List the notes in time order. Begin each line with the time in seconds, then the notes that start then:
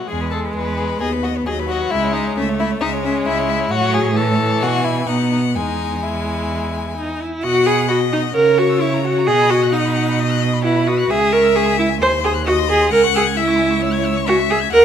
0.07 E2 G#3 G#4
0.21 B4
0.31 G#4 A4
0.44 B4
0.55 E2 G#4 B4
0.67 B4
0.77 G#4
0.89 B4
1.00 D#2 B3 G#4 D#5
1.13 B4
1.23 F#4 D#5
1.37 B4
1.46 D#2 F#3 G#4 D#5
1.59 B4
1.68 F#4 D#5
1.82 B4
1.90 C#2 G#3 E4 E5
2.04 C#5
2.13 D#4 E5
2.27 C#5
2.36 C#2 A3 C#4 E5
2.49 C#5
2.60 E4 E5
2.71 C#5
2.81 C#2 G#3 D#4 E5
2.93 C#5
3.03 C#4 E5
3.16 C#5
3.26 C#2 E4 E5
3.39 C#5
3.49 E5
3.60 C#5
3.71 A2 F#3 F#4 C#5
3.94 G#4
4.16 E3 A4 C#5
4.62 B2 F#4 G#5
4.84 E4
5.07 B2 B3 D#4 F#5
5.32 D#4
5.55 E2 G#3 D#4 G#5
6.03 E4 G#5
6.97 D#4
7.21 E4
7.43 B2 F#4 D#5 F#5
7.55 F#5
7.66 G#4 B5
7.78 D#6
7.88 F#4 D#5 B5
8.01 F#5
8.12 D#4 D#5
8.23 F#5
8.34 C#3 A#4 C#5 F#5
8.47 A#5
8.58 F#4 C#6
8.69 E6
8.81 E4 C#6
8.94 A#5
9.04 F#4 F#5
9.18 A#5
9.27 B2 G#4 D#5 F#5
9.41 B5
9.50 F#4 D#6
9.63 F#6
9.73 D#4 F#5 D#6
9.86 B5
9.96 F#5
10.09 B5
10.20 D#5 D#6
10.31 F#6
10.43 D#6
10.54 B5
10.64 E4 B4 F#5
10.76 B5
10.87 F#4 D#6
10.99 F#6
11.10 C#2 G#4 E5
11.21 G#5
11.33 A#4 C#6
11.44 E6
11.55 G#4 C#6
11.66 G#5
11.77 E4 E5
11.89 G#5
12.00 D#2 C5 G#5
12.14 C6
12.24 G#4 D#6
12.35 F#6
12.46 F#4 D#5 D#6
12.59 C6
12.70 G#4 G#5
12.82 C6
12.91 C#2 A#4 F#5 G#5
13.04 C#6
13.14 G#4 E6
13.26 G#6
13.37 E4 E5 E6
13.48 C#6
13.58 G#5
13.70 C#6
13.82 C#5 E6
13.93 G#6
14.06 E6
14.16 C#6
14.27 F#4 E5 G#5
14.39 C#6
14.50 G#4 E6
14.61 G#6
14.72 D#2 A#4 F#5